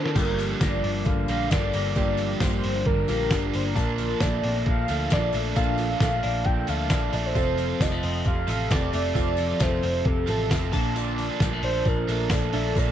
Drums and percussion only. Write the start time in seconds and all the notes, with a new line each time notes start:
0.06 snare
0.16 kick, closed hi-hat, crash, tambourine
0.39 open hi-hat, tambourine
0.61 kick, snare, closed hi-hat, tambourine
0.84 open hi-hat
1.05 kick, closed hi-hat, tambourine
1.28 open hi-hat, tambourine
1.51 kick, snare, closed hi-hat, tambourine
1.73 open hi-hat, tambourine
1.95 kick, closed hi-hat, tambourine
2.17 open hi-hat, tambourine
2.40 kick, snare, closed hi-hat, tambourine
2.63 open hi-hat, tambourine
2.85 kick, closed hi-hat
3.08 open hi-hat, tambourine
3.30 kick, snare, closed hi-hat, tambourine
3.53 open hi-hat, tambourine
3.76 kick, closed hi-hat, tambourine
3.98 open hi-hat, tambourine
4.20 kick, snare, closed hi-hat, tambourine
4.43 open hi-hat
4.66 kick, closed hi-hat
4.88 open hi-hat, tambourine
5.10 kick, snare, closed hi-hat, tambourine
5.33 open hi-hat, tambourine
5.56 kick, closed hi-hat, tambourine
5.78 open hi-hat, tambourine
6.00 kick, snare, closed hi-hat, tambourine
6.23 open hi-hat, tambourine
6.45 kick, closed hi-hat
6.67 open hi-hat, tambourine
6.90 kick, snare, closed hi-hat, tambourine
7.13 open hi-hat, tambourine
7.35 kick, closed hi-hat, tambourine
7.58 open hi-hat, tambourine
7.81 kick, snare, closed hi-hat, tambourine
8.03 open hi-hat, tambourine
8.25 kick, closed hi-hat, tambourine
8.48 open hi-hat, tambourine
8.71 kick, snare, closed hi-hat, tambourine
8.93 open hi-hat, tambourine
9.15 kick, closed hi-hat, tambourine
9.37 open hi-hat, tambourine
9.60 kick, snare, closed hi-hat, tambourine
9.83 open hi-hat, tambourine
10.05 kick, closed hi-hat
10.27 open hi-hat, tambourine
10.51 kick, snare, closed hi-hat, tambourine
10.73 kick, open hi-hat, tambourine
10.96 closed hi-hat, tambourine
11.18 open hi-hat, tambourine
11.40 kick, snare, closed hi-hat, tambourine
11.63 open hi-hat
11.85 kick, closed hi-hat, tambourine
12.08 open hi-hat, tambourine
12.30 kick, snare, closed hi-hat, tambourine
12.53 open hi-hat, tambourine
12.75 kick, closed hi-hat, tambourine